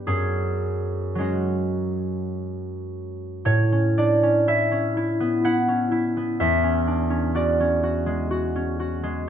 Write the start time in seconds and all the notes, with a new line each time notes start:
Already playing: G2 F#3 B3 G4 B4 D5
0.07 F#2 C#4 G#4
1.15 F#3 G#3
1.19 C#4 F#4
3.45 A2 C#5
3.72 C#4
3.98 D4 D5
4.23 C#4
4.47 E4 E5
4.71 C#4
4.97 E4
5.20 B3
5.44 E4 F#5
5.68 C#4
5.91 E4
6.17 B3
6.40 E2 E5
6.63 C#4
6.87 D4
7.10 C#4
7.35 F#4 D5
7.60 C#4
7.83 F#4
8.06 G#3
8.31 F#4
8.56 C#4
8.80 F#4
9.03 G#3